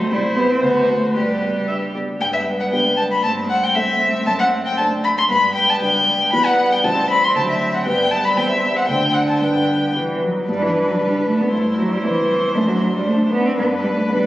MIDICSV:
0, 0, Header, 1, 5, 480
1, 0, Start_track
1, 0, Key_signature, 1, "major"
1, 0, Tempo, 524017
1, 94, Time_signature, 2, 2, 24, 8
1, 2497, Tempo, 512821
1, 7777, Tempo, 528634
1, 9697, Tempo, 515464
1, 13218, End_track
2, 0, Start_track
2, 0, Title_t, "Violin"
2, 0, Program_c, 0, 40
2, 96, Note_on_c, 0, 64, 68
2, 558, Note_off_c, 0, 64, 0
2, 574, Note_on_c, 0, 66, 66
2, 1043, Note_off_c, 0, 66, 0
2, 1055, Note_on_c, 0, 67, 51
2, 1768, Note_off_c, 0, 67, 0
2, 2023, Note_on_c, 0, 79, 73
2, 2070, Note_off_c, 0, 79, 0
2, 2135, Note_on_c, 0, 76, 63
2, 2208, Note_off_c, 0, 76, 0
2, 2384, Note_on_c, 0, 78, 53
2, 2430, Note_off_c, 0, 78, 0
2, 2489, Note_on_c, 0, 79, 68
2, 2722, Note_off_c, 0, 79, 0
2, 2728, Note_on_c, 0, 81, 71
2, 2778, Note_off_c, 0, 81, 0
2, 2863, Note_on_c, 0, 83, 63
2, 2969, Note_off_c, 0, 83, 0
2, 2974, Note_on_c, 0, 81, 73
2, 3049, Note_off_c, 0, 81, 0
2, 3219, Note_on_c, 0, 78, 72
2, 3347, Note_on_c, 0, 79, 61
2, 3361, Note_off_c, 0, 78, 0
2, 3462, Note_on_c, 0, 76, 72
2, 3476, Note_off_c, 0, 79, 0
2, 3933, Note_off_c, 0, 76, 0
2, 3939, Note_on_c, 0, 81, 81
2, 3989, Note_off_c, 0, 81, 0
2, 4056, Note_on_c, 0, 78, 76
2, 4131, Note_off_c, 0, 78, 0
2, 4303, Note_on_c, 0, 79, 73
2, 4414, Note_off_c, 0, 79, 0
2, 4419, Note_on_c, 0, 81, 80
2, 4494, Note_off_c, 0, 81, 0
2, 4664, Note_on_c, 0, 83, 76
2, 4713, Note_off_c, 0, 83, 0
2, 4791, Note_on_c, 0, 84, 80
2, 4838, Note_off_c, 0, 84, 0
2, 4905, Note_on_c, 0, 83, 92
2, 5139, Note_off_c, 0, 83, 0
2, 5144, Note_on_c, 0, 79, 81
2, 5277, Note_on_c, 0, 81, 73
2, 5291, Note_off_c, 0, 79, 0
2, 5392, Note_off_c, 0, 81, 0
2, 5396, Note_on_c, 0, 79, 86
2, 5859, Note_off_c, 0, 79, 0
2, 5871, Note_on_c, 0, 83, 99
2, 5987, Note_on_c, 0, 78, 85
2, 6001, Note_off_c, 0, 83, 0
2, 6238, Note_on_c, 0, 79, 70
2, 6252, Note_off_c, 0, 78, 0
2, 6348, Note_on_c, 0, 81, 84
2, 6362, Note_off_c, 0, 79, 0
2, 6585, Note_off_c, 0, 81, 0
2, 6594, Note_on_c, 0, 83, 86
2, 6724, Note_on_c, 0, 84, 72
2, 6738, Note_off_c, 0, 83, 0
2, 6829, Note_off_c, 0, 84, 0
2, 6835, Note_on_c, 0, 81, 84
2, 6880, Note_off_c, 0, 81, 0
2, 6948, Note_on_c, 0, 76, 69
2, 7194, Note_on_c, 0, 78, 59
2, 7208, Note_off_c, 0, 76, 0
2, 7297, Note_off_c, 0, 78, 0
2, 7302, Note_on_c, 0, 79, 75
2, 7537, Note_on_c, 0, 81, 73
2, 7551, Note_off_c, 0, 79, 0
2, 7661, Note_on_c, 0, 83, 73
2, 7675, Note_off_c, 0, 81, 0
2, 7780, Note_on_c, 0, 79, 79
2, 7794, Note_off_c, 0, 83, 0
2, 7893, Note_off_c, 0, 79, 0
2, 7898, Note_on_c, 0, 76, 65
2, 8139, Note_on_c, 0, 78, 64
2, 8152, Note_off_c, 0, 76, 0
2, 8240, Note_off_c, 0, 78, 0
2, 8246, Note_on_c, 0, 79, 73
2, 8483, Note_on_c, 0, 78, 62
2, 8497, Note_off_c, 0, 79, 0
2, 8606, Note_off_c, 0, 78, 0
2, 8617, Note_on_c, 0, 81, 54
2, 8718, Note_off_c, 0, 81, 0
2, 8724, Note_on_c, 0, 79, 60
2, 9202, Note_off_c, 0, 79, 0
2, 9696, Note_on_c, 0, 71, 50
2, 10622, Note_off_c, 0, 71, 0
2, 10653, Note_on_c, 0, 72, 53
2, 12539, Note_off_c, 0, 72, 0
2, 12584, Note_on_c, 0, 71, 63
2, 13218, Note_off_c, 0, 71, 0
2, 13218, End_track
3, 0, Start_track
3, 0, Title_t, "Grand piano"
3, 0, Program_c, 1, 0
3, 0, Control_c, 1, 64, 127
3, 0, Note_on_c, 1, 39, 64
3, 0, Note_on_c, 1, 60, 52
3, 0, Note_on_c, 1, 69, 53
3, 99, Note_on_c, 1, 36, 64
3, 112, Control_c, 1, 64, 0
3, 117, Note_off_c, 1, 60, 0
3, 118, Note_off_c, 1, 39, 0
3, 120, Note_off_c, 1, 69, 0
3, 290, Control_c, 1, 64, 127
3, 330, Note_on_c, 1, 60, 53
3, 334, Note_on_c, 1, 67, 56
3, 543, Note_off_c, 1, 60, 0
3, 545, Note_off_c, 1, 67, 0
3, 555, Note_off_c, 1, 36, 0
3, 569, Note_on_c, 1, 38, 64
3, 583, Control_c, 1, 64, 0
3, 737, Control_c, 1, 64, 127
3, 812, Note_on_c, 1, 60, 41
3, 815, Note_on_c, 1, 66, 48
3, 1028, Note_off_c, 1, 60, 0
3, 1029, Note_off_c, 1, 66, 0
3, 1035, Note_off_c, 1, 38, 0
3, 1053, Note_on_c, 1, 43, 53
3, 1067, Control_c, 1, 64, 0
3, 1196, Control_c, 1, 64, 127
3, 1299, Note_on_c, 1, 67, 45
3, 1300, Note_on_c, 1, 59, 38
3, 1515, Note_off_c, 1, 59, 0
3, 1515, Note_off_c, 1, 67, 0
3, 1543, Note_on_c, 1, 62, 35
3, 1545, Note_on_c, 1, 67, 38
3, 1759, Note_off_c, 1, 62, 0
3, 1760, Note_off_c, 1, 67, 0
3, 1782, Note_on_c, 1, 59, 39
3, 1785, Note_on_c, 1, 67, 43
3, 1994, Note_off_c, 1, 43, 0
3, 1998, Note_off_c, 1, 59, 0
3, 1999, Note_off_c, 1, 67, 0
3, 2018, Note_on_c, 1, 43, 53
3, 2037, Control_c, 1, 64, 0
3, 2170, Control_c, 1, 64, 127
3, 2481, Note_off_c, 1, 43, 0
3, 2495, Note_on_c, 1, 59, 43
3, 2498, Note_on_c, 1, 62, 39
3, 2503, Note_on_c, 1, 67, 44
3, 2942, Note_off_c, 1, 59, 0
3, 2944, Note_off_c, 1, 62, 0
3, 2946, Note_off_c, 1, 67, 0
3, 2980, Note_on_c, 1, 43, 54
3, 2999, Control_c, 1, 64, 0
3, 3124, Control_c, 1, 64, 127
3, 3449, Note_off_c, 1, 43, 0
3, 3460, Note_on_c, 1, 57, 43
3, 3464, Note_on_c, 1, 60, 43
3, 3469, Note_on_c, 1, 69, 48
3, 3907, Note_off_c, 1, 57, 0
3, 3909, Note_off_c, 1, 60, 0
3, 3911, Note_off_c, 1, 69, 0
3, 3942, Note_on_c, 1, 42, 55
3, 3965, Control_c, 1, 64, 0
3, 4131, Control_c, 1, 64, 127
3, 4411, Note_off_c, 1, 42, 0
3, 4429, Note_on_c, 1, 57, 44
3, 4433, Note_on_c, 1, 62, 44
3, 4439, Note_on_c, 1, 72, 52
3, 4871, Note_off_c, 1, 57, 0
3, 4872, Note_off_c, 1, 62, 0
3, 4875, Note_off_c, 1, 72, 0
3, 4910, Note_on_c, 1, 43, 64
3, 4924, Control_c, 1, 64, 0
3, 5090, Control_c, 1, 64, 127
3, 5374, Note_off_c, 1, 43, 0
3, 5387, Note_on_c, 1, 55, 48
3, 5392, Note_on_c, 1, 62, 49
3, 5394, Note_on_c, 1, 71, 50
3, 5826, Note_off_c, 1, 55, 0
3, 5829, Note_off_c, 1, 62, 0
3, 5830, Note_off_c, 1, 71, 0
3, 5869, Note_on_c, 1, 40, 65
3, 5869, Note_on_c, 1, 55, 46
3, 5873, Note_on_c, 1, 64, 47
3, 5881, Note_on_c, 1, 71, 47
3, 5882, Control_c, 1, 64, 0
3, 6029, Control_c, 1, 64, 127
3, 6307, Note_off_c, 1, 55, 0
3, 6309, Note_off_c, 1, 64, 0
3, 6313, Note_off_c, 1, 71, 0
3, 6330, Note_off_c, 1, 40, 0
3, 6347, Note_on_c, 1, 33, 64
3, 6349, Note_on_c, 1, 55, 46
3, 6351, Note_on_c, 1, 64, 43
3, 6358, Control_c, 1, 64, 0
3, 6358, Note_on_c, 1, 72, 46
3, 6534, Control_c, 1, 64, 127
3, 6788, Note_off_c, 1, 55, 0
3, 6790, Note_off_c, 1, 64, 0
3, 6793, Note_off_c, 1, 72, 0
3, 6811, Note_off_c, 1, 33, 0
3, 6826, Note_on_c, 1, 38, 59
3, 6827, Note_on_c, 1, 54, 45
3, 6831, Note_on_c, 1, 62, 47
3, 6839, Control_c, 1, 64, 0
3, 6839, Note_on_c, 1, 72, 42
3, 7013, Control_c, 1, 64, 127
3, 7266, Note_off_c, 1, 54, 0
3, 7268, Note_off_c, 1, 62, 0
3, 7272, Note_off_c, 1, 72, 0
3, 7289, Note_off_c, 1, 38, 0
3, 7300, Note_on_c, 1, 55, 45
3, 7302, Note_on_c, 1, 43, 59
3, 7308, Note_on_c, 1, 62, 44
3, 7311, Note_on_c, 1, 71, 39
3, 7319, Control_c, 1, 64, 0
3, 7477, Control_c, 1, 64, 127
3, 7741, Note_off_c, 1, 55, 0
3, 7745, Note_off_c, 1, 62, 0
3, 7746, Note_off_c, 1, 71, 0
3, 7765, Note_off_c, 1, 43, 0
3, 7782, Note_on_c, 1, 40, 55
3, 7782, Note_on_c, 1, 55, 42
3, 7786, Note_on_c, 1, 60, 41
3, 7792, Note_on_c, 1, 72, 39
3, 7795, Control_c, 1, 64, 0
3, 7966, Control_c, 1, 64, 127
3, 8216, Note_off_c, 1, 55, 0
3, 8217, Note_off_c, 1, 60, 0
3, 8221, Note_off_c, 1, 72, 0
3, 8238, Note_off_c, 1, 40, 0
3, 8246, Note_on_c, 1, 38, 49
3, 8249, Note_on_c, 1, 57, 39
3, 8251, Note_on_c, 1, 62, 37
3, 8258, Note_on_c, 1, 72, 37
3, 8267, Control_c, 1, 64, 0
3, 8417, Control_c, 1, 64, 127
3, 8694, Note_off_c, 1, 57, 0
3, 8695, Note_off_c, 1, 62, 0
3, 8698, Note_off_c, 1, 72, 0
3, 8714, Note_off_c, 1, 38, 0
3, 8727, Note_on_c, 1, 43, 46
3, 8747, Control_c, 1, 64, 0
3, 8902, Control_c, 1, 64, 127
3, 9198, Note_off_c, 1, 43, 0
3, 9215, Note_on_c, 1, 55, 34
3, 9223, Note_on_c, 1, 62, 35
3, 9226, Note_on_c, 1, 71, 36
3, 9662, Note_off_c, 1, 55, 0
3, 9666, Note_off_c, 1, 62, 0
3, 9667, Note_off_c, 1, 71, 0
3, 9702, Note_on_c, 1, 43, 58
3, 9715, Control_c, 1, 64, 0
3, 9854, Control_c, 1, 64, 127
3, 10168, Note_off_c, 1, 43, 0
3, 10183, Note_on_c, 1, 55, 41
3, 10189, Note_on_c, 1, 62, 42
3, 10190, Note_on_c, 1, 71, 45
3, 10625, Note_off_c, 1, 55, 0
3, 10628, Note_off_c, 1, 62, 0
3, 10628, Note_off_c, 1, 71, 0
3, 10664, Note_on_c, 1, 43, 53
3, 10678, Control_c, 1, 64, 0
3, 10827, Control_c, 1, 64, 127
3, 11131, Note_off_c, 1, 43, 0
3, 11147, Note_on_c, 1, 57, 45
3, 11148, Note_on_c, 1, 60, 46
3, 11152, Note_on_c, 1, 72, 45
3, 11588, Note_off_c, 1, 57, 0
3, 11589, Note_off_c, 1, 60, 0
3, 11591, Note_off_c, 1, 72, 0
3, 11627, Note_on_c, 1, 42, 64
3, 11641, Control_c, 1, 64, 0
3, 11783, Control_c, 1, 64, 127
3, 12089, Note_off_c, 1, 42, 0
3, 12105, Note_on_c, 1, 57, 47
3, 12109, Note_on_c, 1, 62, 46
3, 12112, Note_on_c, 1, 72, 51
3, 12545, Note_off_c, 1, 57, 0
3, 12547, Note_off_c, 1, 62, 0
3, 12548, Note_off_c, 1, 72, 0
3, 12581, Note_on_c, 1, 43, 70
3, 12599, Control_c, 1, 64, 0
3, 12741, Control_c, 1, 64, 127
3, 13045, Note_off_c, 1, 43, 0
3, 13060, Note_on_c, 1, 59, 54
3, 13063, Note_on_c, 1, 62, 49
3, 13068, Note_on_c, 1, 71, 60
3, 13218, Note_off_c, 1, 59, 0
3, 13218, Note_off_c, 1, 62, 0
3, 13218, Note_off_c, 1, 71, 0
3, 13218, End_track
4, 0, Start_track
4, 0, Title_t, "Viola"
4, 0, Program_c, 2, 41
4, 0, Note_on_c, 2, 72, 78
4, 1046, Note_on_c, 2, 71, 52
4, 1060, Note_off_c, 2, 72, 0
4, 1486, Note_off_c, 2, 71, 0
4, 1533, Note_on_c, 2, 76, 61
4, 1606, Note_off_c, 2, 76, 0
4, 1783, Note_on_c, 2, 74, 44
4, 1857, Note_off_c, 2, 74, 0
4, 2022, Note_on_c, 2, 59, 53
4, 2944, Note_off_c, 2, 59, 0
4, 2976, Note_on_c, 2, 60, 59
4, 4867, Note_off_c, 2, 60, 0
4, 4908, Note_on_c, 2, 59, 59
4, 5827, Note_off_c, 2, 59, 0
4, 5869, Note_on_c, 2, 59, 57
4, 6346, Note_on_c, 2, 60, 69
4, 6360, Note_off_c, 2, 59, 0
4, 7301, Note_on_c, 2, 59, 60
4, 7315, Note_off_c, 2, 60, 0
4, 7773, Note_off_c, 2, 59, 0
4, 7779, Note_on_c, 2, 60, 54
4, 8727, Note_on_c, 2, 59, 45
4, 8741, Note_off_c, 2, 60, 0
4, 9511, Note_off_c, 2, 59, 0
4, 9691, Note_on_c, 2, 62, 50
4, 10620, Note_off_c, 2, 62, 0
4, 10657, Note_on_c, 2, 64, 54
4, 11584, Note_off_c, 2, 64, 0
4, 11623, Note_on_c, 2, 62, 64
4, 13218, Note_off_c, 2, 62, 0
4, 13218, End_track
5, 0, Start_track
5, 0, Title_t, "Cello"
5, 0, Program_c, 3, 42
5, 0, Note_on_c, 3, 57, 80
5, 99, Note_off_c, 3, 57, 0
5, 105, Note_on_c, 3, 55, 83
5, 178, Note_off_c, 3, 55, 0
5, 333, Note_on_c, 3, 59, 86
5, 459, Note_on_c, 3, 60, 74
5, 472, Note_off_c, 3, 59, 0
5, 570, Note_on_c, 3, 59, 85
5, 584, Note_off_c, 3, 60, 0
5, 810, Note_on_c, 3, 57, 70
5, 824, Note_off_c, 3, 59, 0
5, 1060, Note_on_c, 3, 55, 69
5, 1074, Note_off_c, 3, 57, 0
5, 1785, Note_off_c, 3, 55, 0
5, 2029, Note_on_c, 3, 55, 52
5, 2948, Note_off_c, 3, 55, 0
5, 2982, Note_on_c, 3, 57, 59
5, 4870, Note_off_c, 3, 57, 0
5, 4913, Note_on_c, 3, 55, 62
5, 5830, Note_off_c, 3, 55, 0
5, 5874, Note_on_c, 3, 55, 66
5, 6835, Note_on_c, 3, 54, 61
5, 6849, Note_off_c, 3, 55, 0
5, 7303, Note_on_c, 3, 55, 55
5, 7317, Note_off_c, 3, 54, 0
5, 8258, Note_on_c, 3, 50, 49
5, 8271, Note_off_c, 3, 55, 0
5, 9170, Note_off_c, 3, 50, 0
5, 9212, Note_on_c, 3, 52, 53
5, 9458, Note_on_c, 3, 54, 47
5, 9471, Note_off_c, 3, 52, 0
5, 9698, Note_off_c, 3, 54, 0
5, 9703, Note_on_c, 3, 55, 75
5, 9826, Note_on_c, 3, 52, 63
5, 9840, Note_off_c, 3, 55, 0
5, 10071, Note_on_c, 3, 54, 54
5, 10085, Note_off_c, 3, 52, 0
5, 10183, Note_off_c, 3, 54, 0
5, 10189, Note_on_c, 3, 55, 71
5, 10420, Note_off_c, 3, 55, 0
5, 10434, Note_on_c, 3, 57, 71
5, 10556, Note_on_c, 3, 59, 71
5, 10570, Note_off_c, 3, 57, 0
5, 10660, Note_off_c, 3, 59, 0
5, 10666, Note_on_c, 3, 57, 75
5, 10741, Note_off_c, 3, 57, 0
5, 10905, Note_on_c, 3, 54, 72
5, 11031, Note_on_c, 3, 55, 66
5, 11045, Note_off_c, 3, 54, 0
5, 11147, Note_on_c, 3, 52, 81
5, 11161, Note_off_c, 3, 55, 0
5, 11626, Note_on_c, 3, 57, 86
5, 11640, Note_off_c, 3, 52, 0
5, 11739, Note_on_c, 3, 54, 73
5, 11753, Note_off_c, 3, 57, 0
5, 11989, Note_on_c, 3, 55, 75
5, 12003, Note_off_c, 3, 54, 0
5, 12106, Note_on_c, 3, 57, 85
5, 12119, Note_off_c, 3, 55, 0
5, 12336, Note_off_c, 3, 57, 0
5, 12342, Note_on_c, 3, 59, 88
5, 12466, Note_on_c, 3, 60, 83
5, 12480, Note_off_c, 3, 59, 0
5, 12570, Note_off_c, 3, 60, 0
5, 12575, Note_on_c, 3, 59, 86
5, 12650, Note_off_c, 3, 59, 0
5, 12817, Note_on_c, 3, 55, 81
5, 12865, Note_off_c, 3, 55, 0
5, 12940, Note_on_c, 3, 57, 81
5, 12987, Note_off_c, 3, 57, 0
5, 13060, Note_on_c, 3, 55, 90
5, 13218, Note_off_c, 3, 55, 0
5, 13218, End_track
0, 0, End_of_file